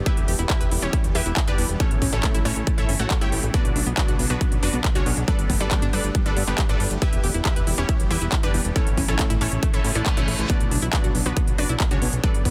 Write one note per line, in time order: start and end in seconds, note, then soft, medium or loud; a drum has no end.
0.06 0.37 E4 medium
0.06 0.13 E4 medium
0.06 0.37 G4 medium
0.06 0.37 B4 medium
0.06 0.37 E5 loud
0.06 kick loud
0.06 closed hi-hat medium
0.17 0.24 E1 medium
0.17 0.32 E3 medium
0.17 0.32 G3 medium
0.17 0.32 B3 medium
0.17 0.32 G4 medium
0.17 closed hi-hat medium
0.28 0.35 E1 loud
0.28 0.31 G4 medium
0.28 open hi-hat loud
0.39 0.46 E1 loud
0.39 0.44 E4 medium
0.39 closed hi-hat medium
0.50 0.65 E3 medium
0.50 0.65 G3 medium
0.50 0.65 B3 medium
0.50 0.54 E4 medium
0.50 0.73 E4 medium
0.50 0.73 G4 medium
0.50 0.65 G4 medium
0.50 0.73 B4 medium
0.50 0.73 E5 loud
0.50 kick loud
0.50 clap loud
0.50 closed hi-hat medium
0.61 0.67 E1 medium
0.61 0.63 B4 loud
0.61 closed hi-hat medium
0.71 0.78 E1 loud
0.71 0.87 E3 medium
0.71 0.87 G3 medium
0.71 0.87 B3 medium
0.71 0.76 E4 medium
0.71 0.87 G4 medium
0.71 open hi-hat loud
0.82 0.89 E1 medium
0.82 1.05 C#4 medium
0.82 1.05 E4 medium
0.82 1.05 G4 medium
0.82 1.05 C#5 loud
0.82 closed hi-hat medium
0.93 1.09 E3 medium
0.93 1.09 G3 medium
0.93 1.09 B3 medium
0.93 1.00 E4 medium
0.93 1.09 G4 medium
0.93 kick loud
0.93 closed hi-hat medium
1.04 1.11 E1 medium
1.04 closed hi-hat medium
1.15 1.22 E2 loud
1.15 1.38 E4 medium
1.15 1.18 G4 medium
1.15 1.38 G4 medium
1.15 1.38 B4 medium
1.15 1.38 E5 medium
1.15 open hi-hat loud
1.26 1.32 E1 medium
1.26 1.41 E3 medium
1.26 1.41 G3 medium
1.26 1.41 B3 medium
1.26 1.30 E4 medium
1.26 1.41 G4 medium
1.26 closed hi-hat medium
1.37 1.41 E4 medium
1.37 kick loud
1.37 clap loud
1.37 closed hi-hat medium
1.47 1.54 F#1 medium
1.47 1.63 E3 medium
1.47 1.63 G3 medium
1.47 1.63 B3 medium
1.47 1.71 D4 medium
1.47 1.63 G4 medium
1.47 1.71 G4 medium
1.47 1.50 B4 loud
1.47 1.71 B4 medium
1.47 1.71 D5 medium
1.47 closed hi-hat medium
1.58 1.65 E1 loud
1.58 1.63 E4 medium
1.58 open hi-hat loud
1.69 1.76 E1 medium
1.69 1.77 E3 medium
1.69 1.77 G3 medium
1.69 1.77 B3 medium
1.69 1.77 G4 medium
1.69 closed hi-hat medium
1.80 1.87 A3 medium
1.80 2.03 C#4 medium
1.80 2.03 E4 medium
1.80 2.03 A4 medium
1.80 2.03 C#5 loud
1.80 kick loud
1.80 closed hi-hat medium
1.91 1.98 A1 medium
1.91 2.06 C#3 medium
1.91 2.06 E3 medium
1.91 2.06 A3 medium
1.91 2.06 E4 medium
1.91 closed hi-hat medium
2.02 2.09 A1 loud
2.02 2.05 C#4 medium
2.02 kick medium
2.02 open hi-hat loud
2.13 2.19 A1 loud
2.13 2.17 A3 medium
2.13 2.36 C#4 medium
2.13 2.36 E4 medium
2.13 2.36 A4 medium
2.13 2.36 C#5 medium
2.13 closed hi-hat medium
2.24 2.39 C#3 medium
2.24 2.39 E3 medium
2.24 2.28 A3 medium
2.24 2.39 A3 medium
2.24 2.39 E4 medium
2.24 kick loud
2.24 clap loud
2.24 closed hi-hat medium
2.34 2.41 A1 medium
2.34 2.37 E4 loud
2.34 closed hi-hat medium
2.45 2.52 A1 medium
2.45 2.61 C#3 medium
2.45 2.61 E3 medium
2.45 2.50 A3 medium
2.45 2.61 A3 loud
2.45 2.68 C#4 medium
2.45 2.68 E4 medium
2.45 2.61 E4 medium
2.45 2.68 A4 medium
2.45 2.68 C#5 loud
2.45 open hi-hat loud
2.56 2.63 A1 medium
2.56 closed hi-hat medium
2.67 2.82 C#3 medium
2.67 2.82 E3 medium
2.67 2.82 A3 medium
2.67 2.74 A3 medium
2.67 2.82 E4 medium
2.67 kick loud
2.67 closed hi-hat medium
2.78 2.85 A1 medium
2.78 2.93 E4 medium
2.78 2.93 A4 medium
2.78 2.93 C#5 medium
2.78 2.93 E5 medium
2.78 closed hi-hat medium
2.89 2.96 G1 loud
2.89 2.92 C#4 medium
2.89 open hi-hat loud
2.99 3.06 A1 loud
2.99 3.15 C#3 medium
2.99 3.15 E3 medium
2.99 3.04 A3 medium
2.99 3.15 A3 medium
2.99 3.15 E4 medium
2.99 3.15 F#4 medium
2.99 3.15 A4 medium
2.99 3.15 C#5 medium
2.99 3.15 F#5 medium
2.99 closed hi-hat medium
3.10 3.15 A3 medium
3.10 kick loud
3.10 clap loud
3.10 closed hi-hat medium
3.21 3.28 G1 medium
3.21 3.37 C#3 medium
3.21 3.37 E3 medium
3.21 3.37 A3 medium
3.21 3.24 E4 loud
3.21 3.37 E4 medium
3.21 3.44 G4 medium
3.21 3.44 C#5 medium
3.21 3.44 E5 medium
3.21 3.44 G5 loud
3.21 closed hi-hat medium
3.32 3.39 A1 loud
3.32 3.37 A3 medium
3.32 open hi-hat loud
3.43 3.50 A1 medium
3.43 3.51 C#3 medium
3.43 3.51 E3 medium
3.43 3.51 A3 medium
3.43 3.51 E4 medium
3.43 closed hi-hat medium
3.54 3.61 B3 medium
3.54 3.85 D4 medium
3.54 3.85 F#4 medium
3.54 3.85 B4 medium
3.54 3.85 D5 loud
3.54 kick loud
3.54 closed hi-hat medium
3.65 3.72 B1 medium
3.65 3.80 C#3 medium
3.65 3.80 F#3 medium
3.65 3.80 B3 medium
3.65 3.80 D4 medium
3.65 closed hi-hat medium
3.76 3.82 B1 loud
3.76 3.79 D4 medium
3.76 open hi-hat loud
3.87 3.93 B1 medium
3.87 3.91 B3 medium
3.87 closed hi-hat medium
3.97 4.13 C#3 medium
3.97 4.13 F#3 medium
3.97 4.13 B3 medium
3.97 4.02 B3 medium
3.97 4.13 D4 medium
3.97 4.21 D4 medium
3.97 4.21 F#4 medium
3.97 4.20 B4 medium
3.97 4.21 D5 medium
3.97 kick loud
3.97 clap loud
3.97 closed hi-hat medium
4.08 4.15 B1 medium
4.08 4.11 F#4 medium
4.08 closed hi-hat medium
4.19 4.26 B1 medium
4.19 4.34 C#3 medium
4.19 4.34 F#3 medium
4.19 4.34 B3 loud
4.19 4.24 B3 medium
4.19 4.34 D4 loud
4.19 open hi-hat loud
4.30 4.37 B1 medium
4.30 4.53 B3 medium
4.30 4.53 D4 medium
4.30 4.53 F#4 medium
4.30 4.53 B4 medium
4.30 closed hi-hat medium
4.41 4.56 C#3 medium
4.41 4.56 F#3 medium
4.41 4.56 B3 medium
4.41 4.48 B3 medium
4.41 4.56 D4 medium
4.41 kick loud
4.41 closed hi-hat medium
4.52 4.59 B1 medium
4.52 closed hi-hat medium
4.63 4.69 F#1 loud
4.63 4.65 D4 medium
4.63 4.86 D4 medium
4.63 4.86 F#4 medium
4.63 4.86 B4 medium
4.63 4.86 D5 medium
4.63 open hi-hat loud
4.73 4.80 B1 medium
4.73 4.89 C#3 medium
4.73 4.89 F#3 medium
4.73 4.89 B3 medium
4.73 4.78 B3 medium
4.73 4.89 D4 medium
4.73 closed hi-hat medium
4.84 4.89 B3 medium
4.84 kick loud
4.84 clap loud
4.84 closed hi-hat medium
4.95 5.02 C#2 medium
4.95 5.10 C#3 medium
4.95 5.10 F#3 medium
4.95 5.10 B3 medium
4.95 5.18 C#4 medium
4.95 5.10 D4 medium
4.95 5.18 D4 medium
4.95 4.98 F#4 loud
4.95 5.18 F#4 medium
4.95 5.18 C#5 loud
4.95 closed hi-hat medium
5.06 5.13 B1 loud
5.06 5.11 B3 medium
5.06 open hi-hat loud
5.17 5.24 B1 medium
5.17 5.25 C#3 medium
5.17 5.24 F#3 medium
5.17 5.25 B3 medium
5.17 5.24 D4 medium
5.17 closed hi-hat medium
5.28 5.35 G3 medium
5.28 5.51 D4 medium
5.28 5.51 A4 medium
5.28 5.51 B4 medium
5.28 5.51 D5 loud
5.28 kick loud
5.28 closed hi-hat medium
5.38 5.46 G1 medium
5.38 5.54 D3 medium
5.38 5.54 A3 medium
5.38 5.54 B3 medium
5.38 5.54 G4 medium
5.38 closed hi-hat medium
5.50 5.56 G1 loud
5.50 5.52 B3 medium
5.50 kick medium
5.50 open hi-hat loud
5.60 5.67 G1 loud
5.60 5.65 G3 medium
5.60 5.83 D4 medium
5.60 5.84 A4 medium
5.60 5.83 B4 medium
5.60 5.84 D5 medium
5.60 closed hi-hat medium
5.71 5.86 D3 medium
5.71 5.76 G3 medium
5.71 5.86 A3 medium
5.71 5.86 B3 medium
5.71 5.86 G4 medium
5.71 kick loud
5.71 clap loud
5.71 closed hi-hat medium
5.82 5.89 G1 medium
5.82 5.85 D4 loud
5.82 closed hi-hat medium
5.93 6.00 G1 loud
5.93 6.08 D3 loud
5.93 5.98 G3 medium
5.93 6.08 A3 medium
5.93 6.08 B3 loud
5.93 6.16 D4 medium
5.93 6.08 G4 medium
5.93 6.16 A4 medium
5.93 6.16 B4 medium
5.93 6.16 D5 loud
5.93 open hi-hat loud
6.04 6.11 G1 medium
6.04 closed hi-hat medium
6.14 6.30 D3 medium
6.14 6.22 G3 medium
6.14 6.30 A3 medium
6.14 6.30 B3 medium
6.14 6.30 G4 medium
6.14 kick loud
6.14 closed hi-hat medium
6.26 6.33 G1 medium
6.26 6.41 D4 medium
6.26 6.41 A4 medium
6.26 6.41 B4 medium
6.26 6.41 D5 medium
6.26 closed hi-hat medium
6.37 6.43 G2 loud
6.37 6.39 B3 medium
6.37 open hi-hat loud
6.47 6.54 G1 medium
6.47 6.63 D3 medium
6.47 6.52 G3 medium
6.47 6.63 A3 medium
6.47 6.63 B3 medium
6.47 6.63 D4 medium
6.47 6.63 G4 medium
6.47 6.63 B4 medium
6.47 closed hi-hat medium
6.58 6.63 G3 medium
6.58 kick loud
6.58 clap loud
6.58 closed hi-hat medium
6.69 6.76 A1 medium
6.69 6.84 D3 medium
6.69 6.84 A3 medium
6.69 6.84 B3 medium
6.69 6.92 D4 medium
6.69 6.72 D4 loud
6.69 6.84 G4 medium
6.69 6.92 A4 medium
6.69 6.92 B4 medium
6.69 6.92 D5 medium
6.69 closed hi-hat medium
6.80 6.87 G1 loud
6.80 6.85 G3 medium
6.80 open hi-hat loud
6.91 6.98 G1 medium
6.91 6.99 D3 medium
6.91 6.99 A3 medium
6.91 6.99 B3 medium
6.91 6.99 G4 medium
6.91 closed hi-hat medium
7.02 7.09 E4 medium
7.02 7.32 E4 medium
7.02 7.32 G4 medium
7.02 7.33 B4 medium
7.02 7.32 E5 loud
7.02 kick loud
7.02 closed hi-hat medium
7.13 7.19 E1 medium
7.13 7.28 E3 medium
7.13 7.28 G3 medium
7.13 7.28 B3 medium
7.13 7.28 G4 medium
7.13 closed hi-hat medium
7.24 7.30 E1 loud
7.24 7.26 G4 medium
7.24 open hi-hat loud
7.34 7.41 E1 medium
7.34 7.39 E4 medium
7.34 closed hi-hat medium
7.45 7.61 E3 medium
7.45 7.61 G3 medium
7.45 7.61 B3 medium
7.45 7.50 E4 medium
7.45 7.68 E4 medium
7.45 7.68 G4 medium
7.45 7.61 G4 medium
7.45 7.68 B4 medium
7.45 7.68 E5 medium
7.45 kick loud
7.45 clap loud
7.45 closed hi-hat medium
7.56 7.63 E1 medium
7.56 7.59 B4 loud
7.56 closed hi-hat medium
7.67 7.74 E1 loud
7.67 7.82 E3 loud
7.67 7.82 G3 loud
7.67 7.82 B3 medium
7.67 7.72 E4 medium
7.67 7.82 G4 loud
7.67 open hi-hat loud
7.78 7.85 E1 medium
7.78 8.01 C#4 medium
7.78 8.01 E4 medium
7.78 8.01 G4 medium
7.78 8.01 C#5 medium
7.78 closed hi-hat medium
7.89 8.04 E3 medium
7.89 8.04 G3 medium
7.89 8.04 B3 medium
7.89 7.96 E4 medium
7.89 8.04 G4 medium
7.89 kick loud
7.89 closed hi-hat medium
8.00 8.06 E1 medium
8.00 closed hi-hat medium
8.10 8.17 E2 loud
8.10 8.34 E4 medium
8.10 8.34 G4 medium
8.10 8.13 G4 medium
8.10 8.34 B4 medium
8.10 8.34 E5 loud
8.10 open hi-hat loud
8.21 8.28 E1 loud
8.21 8.37 E3 medium
8.21 8.37 G3 medium
8.21 8.37 B3 medium
8.21 8.26 E4 medium
8.21 8.37 G4 medium
8.21 closed hi-hat medium
8.32 8.37 E4 medium
8.32 kick loud
8.32 clap loud
8.32 closed hi-hat medium
8.43 8.50 F#1 medium
8.43 8.58 E3 medium
8.43 8.58 G3 medium
8.43 8.58 B3 medium
8.43 8.66 D4 medium
8.43 8.58 G4 medium
8.43 8.66 G4 medium
8.43 8.46 B4 loud
8.43 8.66 B4 medium
8.43 8.66 D5 loud
8.43 closed hi-hat medium
8.54 8.61 E1 loud
8.54 8.59 E4 medium
8.54 open hi-hat loud
8.65 8.72 E1 medium
8.65 8.72 E3 medium
8.65 8.73 G3 medium
8.65 8.72 B3 medium
8.65 8.72 G4 medium
8.65 closed hi-hat medium
8.76 8.83 A3 medium
8.76 8.99 C#4 medium
8.76 8.99 E4 medium
8.76 8.99 A4 medium
8.76 8.99 C#5 loud
8.76 kick loud
8.76 closed hi-hat medium
8.87 8.93 A1 medium
8.87 9.02 C#3 medium
8.87 9.02 E3 medium
8.87 9.02 A3 medium
8.87 9.02 E4 medium
8.87 closed hi-hat medium
8.98 9.04 A1 loud
8.98 9.00 C#4 medium
8.98 kick medium
8.98 open hi-hat loud
9.08 9.15 A1 loud
9.08 9.13 A3 medium
9.08 9.31 C#4 medium
9.08 9.31 E4 medium
9.08 9.31 A4 medium
9.08 9.31 C#5 medium
9.08 closed hi-hat medium
9.19 9.34 C#3 medium
9.19 9.34 E3 medium
9.19 9.34 A3 medium
9.19 9.24 A3 medium
9.19 9.34 E4 medium
9.19 kick loud
9.19 clap loud
9.19 closed hi-hat medium
9.30 9.37 A1 medium
9.30 9.33 E4 loud
9.30 closed hi-hat medium
9.41 9.48 A1 loud
9.41 9.56 C#3 loud
9.41 9.56 E3 medium
9.41 9.46 A3 medium
9.41 9.56 A3 medium
9.41 9.64 C#4 medium
9.41 9.64 E4 medium
9.41 9.56 E4 medium
9.41 9.64 A4 medium
9.41 9.64 C#5 loud
9.41 open hi-hat loud
9.52 9.59 A1 medium
9.52 closed hi-hat medium
9.63 9.78 C#3 loud
9.63 9.78 E3 medium
9.63 9.70 A3 medium
9.63 9.78 A3 medium
9.63 9.78 E4 medium
9.63 kick loud
9.63 closed hi-hat medium
9.63 reverse cymbal medium
9.74 9.80 A1 medium
9.74 9.89 E4 medium
9.74 9.89 A4 medium
9.74 9.89 C#5 medium
9.74 9.89 E5 medium
9.74 closed hi-hat medium
9.84 9.91 A2 loud
9.84 9.87 C#4 medium
9.84 open hi-hat loud
9.95 10.02 A1 loud
9.95 10.11 C#3 medium
9.95 10.11 E3 medium
9.95 10.11 A3 medium
9.95 10.00 A3 medium
9.95 10.11 D4 medium
9.95 10.11 E4 medium
9.95 10.11 A4 medium
9.95 10.11 D5 medium
9.95 closed hi-hat medium
10.06 10.11 A3 medium
10.06 kick loud
10.06 clap loud
10.06 closed hi-hat medium
10.17 10.24 B1 medium
10.17 10.32 C#3 medium
10.17 10.32 E3 medium
10.17 10.32 A3 medium
10.17 10.40 C#4 medium
10.17 10.32 E4 medium
10.17 10.20 E4 loud
10.17 10.40 E4 medium
10.17 10.40 A4 medium
10.17 10.40 C#5 loud
10.17 closed hi-hat medium
10.28 10.35 A1 loud
10.28 10.33 A3 medium
10.28 open hi-hat loud
10.39 10.46 A1 loud
10.39 10.46 C#3 medium
10.39 10.46 E3 medium
10.39 10.46 A3 medium
10.39 10.46 E4 medium
10.39 closed hi-hat medium
10.50 10.57 B3 medium
10.50 10.80 D4 medium
10.50 10.80 F#4 medium
10.50 10.80 B4 medium
10.50 10.80 D5 loud
10.50 kick loud
10.50 closed hi-hat medium
10.60 10.67 B1 medium
10.60 10.76 C#3 medium
10.60 10.76 F#3 medium
10.60 10.76 B3 medium
10.60 10.76 D4 medium
10.60 closed hi-hat medium
10.71 10.78 B1 loud
10.71 10.74 D4 medium
10.71 open hi-hat loud
10.82 10.89 B1 medium
10.82 10.87 E4 loud
10.82 closed hi-hat medium
10.93 11.08 C#3 medium
10.93 11.08 F#3 medium
10.93 11.08 B3 medium
10.93 10.98 B3 medium
10.93 11.08 D4 medium
10.93 11.16 D4 medium
10.93 11.16 F#4 medium
10.93 11.16 B4 medium
10.93 11.16 D5 loud
10.93 kick loud
10.93 clap loud
10.93 closed hi-hat medium
11.04 11.11 B1 medium
11.04 11.07 F#4 loud
11.04 closed hi-hat medium
11.15 11.22 B1 medium
11.15 11.30 C#3 loud
11.15 11.30 F#3 loud
11.15 11.30 B3 medium
11.15 11.20 B3 medium
11.15 11.30 D4 loud
11.15 open hi-hat loud
11.26 11.32 B1 medium
11.26 11.49 B3 medium
11.26 11.49 D4 medium
11.26 11.49 F#4 medium
11.26 11.49 B4 loud
11.26 closed hi-hat medium
11.37 11.52 C#3 medium
11.37 11.52 F#3 medium
11.37 11.44 B3 medium
11.37 11.52 B3 loud
11.37 11.52 D4 medium
11.37 kick loud
11.37 closed hi-hat medium
11.47 11.54 B1 medium
11.47 closed hi-hat medium
11.58 11.65 F#1 loud
11.58 11.81 D4 medium
11.58 11.61 D4 medium
11.58 11.81 F#4 medium
11.58 11.81 B4 medium
11.58 11.81 D5 loud
11.58 open hi-hat loud
11.69 11.76 B1 medium
11.69 11.84 C#3 medium
11.69 11.84 F#3 medium
11.69 11.84 B3 loud
11.69 11.84 D4 medium
11.69 11.74 E4 loud
11.69 closed hi-hat medium
11.80 11.85 B3 medium
11.80 kick loud
11.80 clap loud
11.80 closed hi-hat medium
11.91 11.98 C#2 medium
11.91 12.06 C#3 medium
11.91 12.06 F#3 medium
11.91 12.06 B3 medium
11.91 12.14 C#4 medium
11.91 12.14 D4 medium
11.91 12.06 D4 medium
11.91 11.94 F#4 loud
11.91 12.14 F#4 medium
11.91 12.14 C#5 medium
11.91 closed hi-hat medium
12.02 12.09 B1 loud
12.02 12.07 B3 medium
12.02 open hi-hat loud
12.13 12.19 B1 medium
12.13 12.20 C#3 medium
12.13 12.20 F#3 medium
12.13 12.20 B3 medium
12.13 12.20 D4 medium
12.13 closed hi-hat medium
12.24 12.31 G3 medium
12.24 12.47 D4 medium
12.24 12.47 A4 medium
12.24 12.47 B4 medium
12.24 12.47 D5 loud
12.24 kick loud
12.24 closed hi-hat medium
12.34 12.41 G1 medium
12.34 12.49 D3 medium
12.34 12.50 A3 medium
12.34 12.49 B3 medium
12.34 12.50 G4 medium
12.34 closed hi-hat medium
12.45 12.51 G1 loud
12.45 12.48 B3 medium
12.45 kick medium
12.45 open hi-hat loud